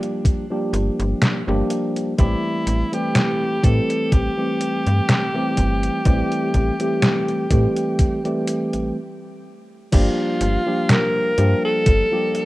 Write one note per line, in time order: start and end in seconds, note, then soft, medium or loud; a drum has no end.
0.00 0.44 F3 medium
0.00 0.45 G3 medium
0.00 0.45 A#3 medium
0.00 0.45 D4 medium
0.00 0.45 G4 medium
0.00 closed hi-hat soft
0.25 kick loud
0.25 closed hi-hat medium
0.50 1.41 F3 medium
0.50 1.41 G3 medium
0.50 1.41 A#3 medium
0.50 1.42 D4 medium
0.50 1.42 G4 medium
0.73 0.90 G1 loud
0.73 closed hi-hat medium
0.99 1.14 G1 loud
0.99 closed hi-hat soft
1.22 snare loud
1.22 closed hi-hat medium
1.47 1.62 G1 loud
1.47 2.13 F3 medium
1.47 2.13 G3 medium
1.47 2.13 A#3 medium
1.47 2.13 D4 medium
1.47 2.14 G4 medium
1.70 closed hi-hat medium
1.96 closed hi-hat soft
2.17 2.35 A1 loud
2.17 2.86 E3 medium
2.17 2.86 G3 medium
2.17 2.87 A3 medium
2.17 2.87 C4 medium
2.17 2.89 E4 loud
2.17 2.87 G4 medium
2.17 kick loud
2.17 closed hi-hat medium
2.67 2.83 A1 medium
2.67 closed hi-hat medium
2.92 3.58 E3 medium
2.92 3.58 G3 medium
2.92 3.58 A3 medium
2.92 3.59 C4 medium
2.92 3.59 G4 medium
2.92 3.66 G4 loud
2.92 closed hi-hat soft
3.15 snare loud
3.15 closed hi-hat medium
3.63 3.80 A2 medium
3.63 4.31 E3 medium
3.63 4.32 G3 medium
3.63 4.32 A3 medium
3.63 4.32 C4 medium
3.63 4.32 G4 medium
3.63 4.14 A4 loud
3.63 kick loud
3.63 closed hi-hat medium
3.90 closed hi-hat soft
4.12 4.29 A1 medium
4.12 8.96 G4 loud
4.12 kick loud
4.12 closed hi-hat medium
4.37 5.28 E3 medium
4.37 5.28 G3 medium
4.37 5.29 A3 medium
4.37 5.29 C4 medium
4.37 5.29 G4 medium
4.61 closed hi-hat medium
4.87 5.01 G2 medium
4.87 closed hi-hat soft
5.09 snare loud
5.09 closed hi-hat medium
5.34 6.00 E3 medium
5.34 6.00 G3 medium
5.34 6.00 A3 medium
5.34 6.00 C4 medium
5.34 6.01 G4 loud
5.57 5.89 G1 medium
5.57 kick medium
5.57 closed hi-hat medium
5.83 closed hi-hat medium
6.05 6.22 A1 loud
6.05 6.73 E3 medium
6.05 6.73 G3 medium
6.05 6.74 A3 medium
6.05 6.74 C4 medium
6.05 6.74 G4 medium
6.05 kick loud
6.05 closed hi-hat medium
6.32 closed hi-hat soft
6.54 6.71 A1 medium
6.54 kick medium
6.54 closed hi-hat medium
6.79 7.45 E3 medium
6.79 7.45 G3 medium
6.79 7.46 A3 medium
6.79 7.46 C4 medium
6.79 7.46 G4 medium
6.79 closed hi-hat medium
7.02 snare loud
7.02 closed hi-hat medium
7.29 closed hi-hat soft
7.50 7.67 A2 medium
7.50 8.18 E3 medium
7.50 8.19 G3 medium
7.50 8.19 A3 medium
7.50 8.19 C4 medium
7.50 8.19 G4 medium
7.50 kick loud
7.50 closed hi-hat medium
7.77 closed hi-hat medium
7.99 kick loud
7.99 closed hi-hat medium
8.24 8.95 E3 medium
8.24 8.96 G3 medium
8.24 8.96 A3 medium
8.24 8.96 C4 medium
8.24 8.96 G4 medium
8.24 closed hi-hat soft
8.47 closed hi-hat medium
8.73 8.92 A1 soft
8.73 closed hi-hat soft
9.92 10.09 G1 loud
9.92 10.60 F3 medium
9.92 10.61 G3 medium
9.92 10.61 A#3 medium
9.92 10.61 D4 medium
9.92 10.92 F4 loud
9.92 10.61 G4 medium
9.92 kick loud
9.92 closed hi-hat medium
9.92 crash loud
10.41 10.58 G1 medium
10.41 closed hi-hat medium
10.66 11.32 F3 medium
10.66 11.32 G3 medium
10.66 11.32 A#3 medium
10.66 11.33 D4 medium
10.66 11.33 G4 medium
10.89 11.64 A#4 loud
10.89 snare loud
10.89 closed hi-hat medium
11.37 11.54 G2 medium
11.37 12.06 F3 medium
11.37 12.06 G3 medium
11.37 12.06 A#3 medium
11.37 12.06 D4 medium
11.37 12.06 G4 medium
11.37 closed hi-hat medium
11.65 12.45 A4 loud
11.86 12.03 G1 medium
11.86 kick loud
11.86 closed hi-hat medium
12.11 12.45 F3 medium
12.11 12.45 G3 medium
12.11 12.45 A#3 medium
12.11 12.45 D4 medium
12.11 12.45 G4 medium
12.35 closed hi-hat medium